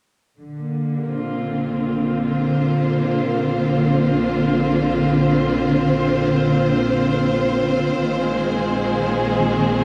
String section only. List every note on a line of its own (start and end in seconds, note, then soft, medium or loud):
0.39 8.01 D3 medium
0.60 9.84 A#3 soft
1.10 9.84 C4 medium
1.10 9.84 F4 medium
2.30 9.84 C5 medium
8.00 9.84 D#3 medium
8.08 9.84 G#3 medium
8.18 9.84 G#4 medium